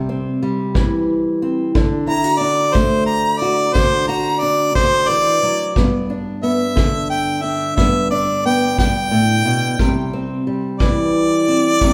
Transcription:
0.00 0.75 C3 medium
0.00 0.41 G3 medium
0.09 1.41 C4 medium
0.43 1.75 G3 medium
0.74 1.71 E3 medium
0.74 kick medium
1.42 1.71 C4 medium
1.75 3.73 D3 medium
1.75 2.40 D4 medium
1.75 kick medium
2.07 2.24 E4 medium
2.07 2.41 A#5 loud
2.24 3.41 F#4 medium
2.39 3.74 D4 medium
2.39 2.76 D5 medium
2.74 5.72 A3 medium
2.74 3.06 C5 loud
2.74 kick medium
3.06 3.41 A#5 loud
3.40 4.07 F#4 medium
3.40 3.74 D5 medium
3.73 4.74 D3 medium
3.73 4.41 D4 medium
3.73 4.07 C5 loud
3.73 kick medium
4.08 5.72 F#4 medium
4.08 4.42 A#5 medium
4.40 5.72 D4 medium
4.40 4.74 D5 medium
4.75 5.08 D3 medium
4.75 5.10 C5 loud
4.75 kick medium
5.09 5.42 E3 medium
5.09 5.74 D5 loud
5.43 5.76 F#3 medium
5.76 7.76 G2 medium
5.76 6.42 B3 medium
5.76 kick medium
6.10 7.43 D4 medium
6.43 7.76 B3 medium
6.43 7.08 E5 medium
6.76 9.78 D3 medium
6.76 kick medium
7.10 7.44 G5 medium
7.42 8.10 D4 medium
7.42 7.76 E5 medium
7.76 8.76 G2 medium
7.76 8.45 B3 medium
7.76 8.09 E5 medium
7.76 kick medium
8.11 9.75 D4 medium
8.11 8.43 D5 medium
8.46 9.75 B3 medium
8.46 8.78 G5 loud
8.78 9.11 G2 medium
8.78 10.09 G5 loud
8.78 kick medium
9.11 9.45 A2 medium
9.46 9.79 B2 medium
9.79 10.80 C3 medium
9.79 10.47 G3 medium
9.79 kick medium
10.13 11.47 C4 medium
10.47 11.82 G3 medium
10.79 11.93 E3 medium
10.79 11.93 D5 loud
10.79 kick medium
11.48 11.93 C4 medium
11.81 11.93 C3 medium
11.81 11.93 G3 medium
11.81 kick medium

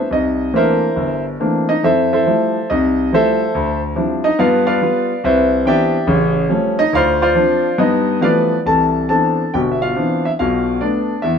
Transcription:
0.11 0.48 C2 medium
0.11 0.52 D#4 medium
0.11 0.52 D#5 medium
0.53 0.84 E3 soft
0.53 0.84 A3 soft
0.53 0.84 A#3 soft
0.53 0.84 C4 soft
0.53 0.84 D4 soft
0.53 1.23 E4 medium
0.53 1.23 A#4 medium
0.53 1.23 C5 medium
0.53 1.23 E5 medium
0.96 1.34 G1 medium
1.40 1.70 E3 soft
1.40 1.71 A3 soft
1.40 1.71 A#3 soft
1.40 1.71 C4 soft
1.40 1.71 D4 medium
1.69 1.83 D#4 medium
1.69 1.83 D#5 medium
1.83 2.21 F2 medium
1.83 2.12 E4 medium
1.83 2.12 A4 medium
1.83 2.12 C5 medium
1.83 2.11 E5 medium
2.13 2.26 E4 medium
2.13 2.67 A4 medium
2.13 2.67 C5 medium
2.13 2.67 E5 medium
2.26 2.57 F3 soft
2.26 2.57 G3 soft
2.26 2.57 A3 soft
2.26 2.57 E4 medium
2.70 3.08 C2 medium
2.70 3.10 D#4 medium
2.70 3.10 D#5 medium
3.13 3.42 F3 soft
3.13 3.43 G3 soft
3.13 3.43 A3 soft
3.13 3.43 E4 medium
3.13 3.80 A4 medium
3.13 3.80 C5 medium
3.13 3.80 E5 medium
3.55 3.91 D2 medium
3.96 4.26 F3 medium
3.96 4.26 G3 soft
3.96 4.26 C4 soft
3.96 4.26 D4 soft
3.96 4.26 E4 medium
4.24 4.39 D#4 medium
4.24 4.39 D#5 medium
4.39 4.76 G2 medium
4.39 4.76 B3 medium
4.39 4.65 F4 medium
4.39 4.65 B4 medium
4.39 4.65 D5 medium
4.39 4.65 F5 medium
4.67 4.81 F4 medium
4.67 5.20 B4 medium
4.67 5.20 D5 medium
4.67 5.20 F5 medium
4.82 5.11 G3 soft
4.82 5.11 B3 medium
4.82 5.12 F4 medium
5.24 5.61 C2 medium
5.24 5.64 E4 medium
5.24 5.64 B4 medium
5.24 5.64 C5 medium
5.24 5.64 E5 medium
5.65 5.95 E3 medium
5.65 5.95 B3 medium
5.65 5.95 C4 medium
5.65 5.96 D4 medium
5.65 6.33 G4 medium
5.65 6.07 D5 medium
5.65 6.06 E5 medium
5.65 6.33 G5 medium
6.07 6.45 A1 medium
6.07 6.45 C#3 medium
6.49 6.80 F3 medium
6.49 6.80 G3 medium
6.49 6.80 A3 soft
6.49 6.80 C#4 medium
6.79 6.93 D#4 medium
6.79 6.93 D#5 loud
6.93 7.30 D2 medium
6.93 7.21 F4 medium
6.93 7.20 C5 medium
6.93 7.21 D5 medium
6.93 7.21 F5 loud
7.22 7.76 F4 medium
7.22 7.76 C5 medium
7.22 7.76 D5 medium
7.22 7.76 F5 medium
7.35 7.66 F3 medium
7.35 7.66 C4 soft
7.35 7.66 D4 medium
7.78 8.18 G2 medium
7.78 8.17 B3 medium
7.78 8.21 D#4 medium
7.78 8.21 D#5 medium
8.21 8.53 E3 medium
8.21 8.54 F3 medium
8.21 8.53 G3 medium
8.21 8.54 A3 medium
8.21 8.54 B3 medium
8.21 8.25 F4 medium
8.21 8.58 B4 medium
8.21 8.58 D5 medium
8.21 8.24 F5 medium
8.65 9.04 C2 medium
8.65 9.04 E3 medium
8.65 9.08 A4 medium
8.65 9.08 A5 medium
9.09 9.41 E3 soft
9.09 9.41 B3 soft
9.09 9.41 C4 soft
9.09 9.41 D4 soft
9.09 9.51 A4 medium
9.09 9.55 A5 medium
9.54 9.92 G1 medium
9.54 9.92 B2 medium
9.54 9.60 G4 medium
9.54 9.59 G5 medium
9.72 9.82 E5 medium
9.82 10.23 F4 medium
9.82 10.27 F5 medium
9.96 10.26 E3 soft
9.96 10.27 B3 soft
9.96 10.27 C4 soft
9.96 10.27 D4 medium
10.25 10.31 E4 medium
10.25 10.30 E5 medium
10.39 10.77 B1 medium
10.39 10.77 B2 medium
10.39 10.79 F4 medium
10.39 10.83 F5 medium
10.81 11.12 A3 soft
10.81 11.12 B3 soft
10.81 11.22 D4 medium
10.81 11.25 D5 medium
11.22 11.39 E2 medium
11.22 11.39 E4 medium
11.22 11.39 E5 medium

